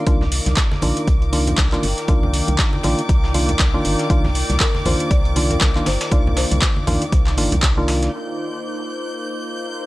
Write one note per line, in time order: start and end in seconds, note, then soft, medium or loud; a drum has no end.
0.00 9.86 D#4 medium
0.00 9.86 A#4 medium
0.00 1.54 F5 medium
0.00 9.86 D6 medium
0.07 0.40 C2 loud
0.07 0.24 D#3 loud
0.07 8.09 D#3 medium
0.07 0.24 A#3 medium
0.07 8.09 A#3 medium
0.07 0.24 D4 medium
0.07 8.09 F4 medium
0.07 0.24 F4 loud
0.07 8.09 D5 medium
0.07 8.15 D6 medium
0.07 kick loud
0.07 closed hi-hat soft
0.07 closed hi-hat medium
0.21 snare soft
0.21 low conga medium
0.32 closed hi-hat medium
0.32 open hi-hat loud
0.46 0.54 C2 loud
0.46 snare soft
0.46 closed hi-hat medium
0.46 high conga medium
0.57 kick loud
0.57 snare loud
0.57 clap loud
0.57 closed hi-hat soft
0.57 closed hi-hat medium
0.72 snare medium
0.72 high conga medium
0.82 0.93 A#1 medium
0.82 1.07 D#3 medium
0.82 1.07 A#3 medium
0.82 1.07 D4 medium
0.82 1.07 F4 medium
0.82 closed hi-hat medium
0.82 open hi-hat medium
0.82 high conga medium
0.82 low conga medium
0.97 closed hi-hat medium
1.07 1.53 C2 loud
1.07 kick loud
1.07 closed hi-hat medium
1.07 closed hi-hat soft
1.22 closed hi-hat soft
1.33 1.69 D#3 medium
1.33 1.69 A#3 medium
1.33 1.69 D4 medium
1.33 1.69 F4 medium
1.33 closed hi-hat medium
1.33 open hi-hat loud
1.33 high conga medium
1.39 8.14 G5 medium
1.47 closed hi-hat soft
1.47 closed hi-hat medium
1.47 low conga medium
1.58 1.78 C2 medium
1.58 kick loud
1.58 snare loud
1.58 clap loud
1.58 closed hi-hat medium
1.58 closed hi-hat soft
1.72 1.87 D#3 medium
1.72 1.87 A#3 medium
1.72 1.87 D4 medium
1.72 1.87 F4 loud
1.72 clap soft
1.72 closed hi-hat soft
1.83 1.94 G1 medium
1.83 closed hi-hat medium
1.83 open hi-hat medium
1.97 snare soft
1.97 closed hi-hat medium
2.08 2.42 C2 medium
2.08 2.81 D#3 medium
2.08 2.81 A#3 medium
2.08 2.82 D4 medium
2.08 2.82 F4 medium
2.08 kick loud
2.08 closed hi-hat medium
2.08 closed hi-hat soft
2.23 low conga medium
2.33 closed hi-hat medium
2.33 open hi-hat medium
2.48 2.56 C2 loud
2.48 closed hi-hat soft
2.48 closed hi-hat medium
2.48 high conga medium
2.58 kick loud
2.58 snare loud
2.58 clap loud
2.58 closed hi-hat medium
2.58 closed hi-hat soft
2.73 high conga medium
2.83 2.95 A#1 medium
2.83 3.01 D#3 medium
2.83 3.01 A#3 medium
2.83 3.01 D4 medium
2.83 3.01 F4 medium
2.83 snare medium
2.83 closed hi-hat medium
2.83 open hi-hat medium
2.83 high conga medium
2.83 low conga medium
2.99 closed hi-hat medium
3.09 3.55 C2 loud
3.09 kick loud
3.09 closed hi-hat medium
3.24 snare medium
3.34 3.51 D#3 medium
3.34 3.51 A#3 medium
3.34 3.52 D4 medium
3.34 3.52 F4 medium
3.34 open hi-hat medium
3.34 open hi-hat loud
3.34 high conga medium
3.49 closed hi-hat medium
3.49 closed hi-hat soft
3.49 low conga medium
3.59 3.79 C2 medium
3.59 kick loud
3.59 snare loud
3.59 clap loud
3.59 closed hi-hat medium
3.59 closed hi-hat soft
3.74 4.07 D#3 medium
3.74 4.08 A#3 medium
3.74 4.08 D4 medium
3.74 4.08 F4 loud
3.85 3.96 G1 medium
3.85 closed hi-hat medium
3.85 open hi-hat medium
3.99 snare medium
3.99 closed hi-hat medium
4.10 4.44 C2 loud
4.10 4.27 D#3 loud
4.10 4.27 A#3 medium
4.10 4.27 D4 medium
4.10 4.27 F4 loud
4.10 kick loud
4.10 closed hi-hat medium
4.24 snare soft
4.24 low conga medium
4.35 closed hi-hat medium
4.35 open hi-hat loud
4.50 4.58 C2 loud
4.50 snare soft
4.50 closed hi-hat medium
4.50 high conga medium
4.60 4.86 A#4 medium
4.60 kick loud
4.60 snare loud
4.60 clap loud
4.60 closed hi-hat medium
4.60 closed hi-hat soft
4.75 snare medium
4.75 high conga medium
4.86 4.97 A#1 medium
4.86 5.11 D#3 medium
4.86 5.11 A#3 medium
4.86 5.11 D4 medium
4.86 5.11 F4 medium
4.86 5.09 C5 loud
4.86 closed hi-hat medium
4.86 open hi-hat medium
4.86 high conga medium
4.86 low conga medium
5.00 closed hi-hat medium
5.11 5.57 C2 loud
5.11 5.52 D5 loud
5.11 kick loud
5.11 closed hi-hat medium
5.25 closed hi-hat soft
5.36 5.72 D#3 medium
5.36 5.72 A#3 medium
5.36 5.72 D4 medium
5.36 5.72 F4 medium
5.36 closed hi-hat medium
5.36 open hi-hat medium
5.36 high conga medium
5.50 5.84 A#4 loud
5.50 closed hi-hat soft
5.50 closed hi-hat medium
5.50 low conga medium
5.61 5.81 C2 medium
5.61 kick loud
5.61 snare loud
5.61 clap loud
5.61 closed hi-hat medium
5.75 5.90 D#3 medium
5.75 5.90 A#3 medium
5.75 5.90 D4 medium
5.75 5.90 F4 medium
5.75 clap soft
5.75 closed hi-hat soft
5.86 5.97 G1 medium
5.86 6.13 C5 medium
5.86 snare loud
5.86 closed hi-hat medium
5.86 open hi-hat medium
6.01 snare loud
6.01 closed hi-hat medium
6.11 6.45 C2 loud
6.11 6.85 D#3 medium
6.11 6.85 A#3 medium
6.11 6.85 D4 medium
6.11 6.85 F4 medium
6.11 6.38 D5 loud
6.11 kick loud
6.11 closed hi-hat medium
6.27 low conga medium
6.37 7.09 C5 medium
6.37 snare loud
6.37 closed hi-hat medium
6.37 open hi-hat medium
6.51 6.59 C2 loud
6.51 closed hi-hat soft
6.51 closed hi-hat medium
6.51 high conga medium
6.62 kick loud
6.62 snare loud
6.62 clap loud
6.62 closed hi-hat medium
6.77 high conga medium
6.87 6.98 A#1 loud
6.87 7.04 D#3 medium
6.87 7.04 A#3 medium
6.87 7.04 D4 medium
6.87 7.04 F4 loud
6.87 snare medium
6.87 closed hi-hat medium
6.87 open hi-hat medium
6.87 high conga medium
6.87 low conga medium
7.02 closed hi-hat medium
7.12 7.39 C2 loud
7.12 kick loud
7.12 closed hi-hat medium
7.27 snare medium
7.27 clap soft
7.37 7.49 G1 loud
7.37 7.55 D#3 medium
7.37 7.55 A#3 medium
7.37 7.55 D4 medium
7.37 7.55 F4 medium
7.37 open hi-hat medium
7.37 open hi-hat loud
7.37 high conga medium
7.52 8.09 C2 medium
7.52 closed hi-hat soft
7.52 closed hi-hat medium
7.52 low conga medium
7.63 kick loud
7.63 snare loud
7.63 clap loud
7.63 closed hi-hat medium
7.77 8.11 D#3 medium
7.77 8.11 A#3 medium
7.77 8.11 D4 medium
7.77 8.11 F4 loud
7.88 snare loud
7.88 closed hi-hat medium
7.88 open hi-hat medium
8.03 snare medium
8.03 closed hi-hat medium
8.13 9.86 A#3 medium
8.13 9.86 D#4 medium
8.13 9.86 F4 medium
8.13 9.86 C5 medium
8.13 9.86 D6 medium
8.13 9.86 G6 medium
8.13 closed hi-hat medium
8.28 snare soft
8.39 9.86 C5 medium
8.39 closed hi-hat medium
8.53 snare soft
8.64 closed hi-hat medium
8.78 snare medium
8.89 closed hi-hat medium
9.05 9.86 F5 medium
9.14 closed hi-hat medium
9.29 closed hi-hat soft
9.39 closed hi-hat medium
9.54 closed hi-hat soft
9.65 closed hi-hat medium